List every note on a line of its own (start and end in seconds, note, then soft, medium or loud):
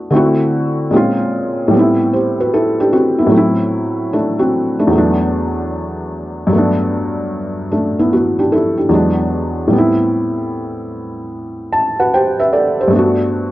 0.00 0.12 A3 medium
0.00 0.14 B3 medium
0.00 0.11 D4 medium
0.00 0.14 E4 medium
0.00 0.12 F#4 medium
0.00 0.14 A4 medium
0.10 0.91 D3 medium
0.10 0.92 A3 medium
0.10 0.92 C4 medium
0.15 0.93 E4 medium
0.15 0.94 F#4 medium
0.91 1.71 A#2 medium
0.91 1.72 G#3 medium
0.91 1.73 C4 medium
0.91 1.73 C#4 medium
0.96 1.74 F4 medium
1.68 3.25 A2 medium
1.68 3.28 G3 medium
1.74 2.12 B3 medium
1.74 2.13 C4 medium
1.79 2.15 E4 medium
2.13 2.38 G4 medium
2.13 2.38 C5 medium
2.40 2.52 F#4 medium
2.40 2.52 B4 medium
2.54 2.78 E4 medium
2.54 2.78 A4 medium
2.80 2.92 D4 medium
2.80 2.92 G4 medium
2.93 3.18 C4 medium
2.93 3.17 F#4 medium
3.19 3.57 B3 medium
3.19 3.36 E4 medium
3.27 4.86 A2 medium
3.27 4.87 F#3 medium
3.32 4.10 A3 medium
3.32 4.11 C4 medium
3.37 4.13 E4 medium
4.13 4.38 A3 medium
4.13 4.37 D4 medium
4.39 4.77 C4 medium
4.39 4.77 F#4 medium
4.79 4.91 A3 medium
4.79 4.96 D4 medium
4.87 6.46 E2 medium
4.87 6.48 F#3 medium
4.93 6.49 A3 medium
4.93 6.50 B3 medium
4.98 6.52 D4 medium
6.47 8.85 G2 medium
6.47 8.87 F#3 medium
6.53 7.70 A3 medium
6.53 7.71 B3 medium
6.58 7.70 D4 medium
7.71 7.97 A3 soft
7.71 7.97 D4 medium
7.99 8.12 B3 medium
7.99 8.12 E4 medium
8.13 8.38 B3 medium
8.13 8.37 F#4 medium
8.39 8.52 D4 medium
8.39 8.51 G4 medium
8.52 8.77 E4 medium
8.52 8.77 A4 medium
8.77 8.93 D4 soft
8.77 9.16 G4 medium
8.89 9.70 E2 medium
8.89 9.71 F#3 medium
8.89 9.72 G#3 medium
8.93 9.71 B3 medium
8.93 9.73 D4 medium
9.68 12.86 A2 medium
9.68 12.87 G3 medium
9.73 12.88 B3 medium
9.73 12.90 C4 medium
9.78 12.91 E4 medium
11.73 11.97 A5 medium
12.00 12.12 F#4 soft
12.00 12.12 B4 medium
12.00 12.12 F#5 medium
12.14 12.38 G4 medium
12.14 12.38 C5 medium
12.14 12.37 G5 medium
12.40 12.52 B4 medium
12.40 12.52 E5 medium
12.53 12.78 A4 medium
12.53 12.90 D5 medium
12.81 13.18 G4 medium
12.81 13.17 C5 medium
12.88 13.52 G2 medium
12.88 13.52 A3 medium
12.93 13.52 B3 medium
12.93 13.52 D4 medium
12.98 13.52 F#4 medium